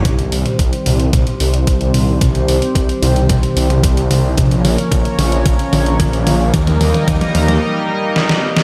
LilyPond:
<<
  \new Staff \with { instrumentName = "Analog synth pad" } { \time 4/4 \key c \phrygian \tempo 4 = 111 << { <ees c' g' c''>1~ | <ees c' g' c''>1 | <f des' bes' des''>1 | <g ees' bes' ees''>1 | } \\ { g1~ | g1 | bes1~ | bes1 | } >> }
  \new Staff \with { instrumentName = "Detuned saw bass" } { \clef bass \time 4/4 \key c \phrygian c,8 c,8 c,8 c,8 c,8 c,8 c,8 c,8 | c,8 c,8 c,8 c,8 c,8 c,8 c,8 c,8 | bes,,8 bes,,8 bes,,8 bes,,8 bes,,8 bes,,8 bes,,8 bes,,8 | ees,8 ees,8 ees,8 ees,8 r2 | }
  \new DrumStaff \with { instrumentName = "Drums" } \drummode { \time 4/4 <hh bd toml>16 hh16 hho16 <hh toml>16 <hh bd>16 hh16 <hho toml>16 hh16 <hh bd toml>16 hh16 hho16 hh16 <hh bd>16 hh16 <hho toml>8 | <hh bd toml>16 hh16 hho16 hh16 <hh bd>16 hh16 <hho toml>16 hh16 <hh bd toml>16 hh16 hho16 <hh toml>16 <hh bd>16 hh16 <hho toml>8 | <hh bd toml>16 hh16 <hho toml>16 hh16 <hh bd toml>16 hh16 <hho toml>16 hh16 <hh bd toml>16 hh16 <hho toml>16 hh16 <hh bd toml>16 hh16 <hho toml>8 | <hh bd toml>16 <hh toml>16 <hho toml>16 <hh toml>16 <hh bd toml>16 <hh toml>16 <hho toml>16 <hh toml>16 r4 sn16 sn8 sn16 | }
>>